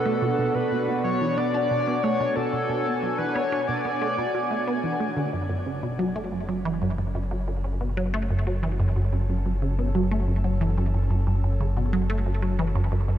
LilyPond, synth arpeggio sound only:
\new Staff \with { instrumentName = "Synth arpeggio sound" } { \clef bass \time 4/4 \key fis \minor \tempo 4 = 91 a16 b,16 b,16 b,16 b,16 b,16 fis16 e16 b16 d'16 b,16 b16 a16 b,16 b,16 b,16 | b,16 b,16 fis16 e16 b16 d'16 b,16 b16 a16 b,16 fis'16 a16 b16 e16 a16 d16 | fis,16 fis,16 cis16 b,16 fis16 a16 fis,16 fis16 e16 fis,16 fis,16 fis,16 fis,16 fis,16 cis16 b,16 | fis16 a16 fis,16 fis16 e16 fis,16 fis,16 fis,16 fis,16 fis,16 cis16 b,16 fis16 a16 fis,16 fis16 |
e16 fis,16 fis,16 fis,16 fis,16 fis,16 cis16 b,16 fis16 a16 fis,16 fis16 e16 fis,16 fis,16 fis,16 | }